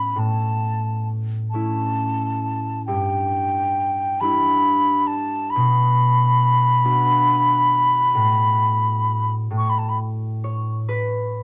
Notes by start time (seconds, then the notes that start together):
Already playing: A2 A3 B3 C#4 B5
0.09 B5
0.16 A2 A5
1.50 A3 C#4 A5
1.55 E4
2.86 G2 G5
4.21 G3 D4 E4 B5
5.07 A5
5.50 B5
5.55 B2
6.84 B3 D4 F#4
8.15 A2
9.50 A2
9.58 C#6
9.70 B5
9.79 A5
9.89 B5
10.44 C#5
10.89 B4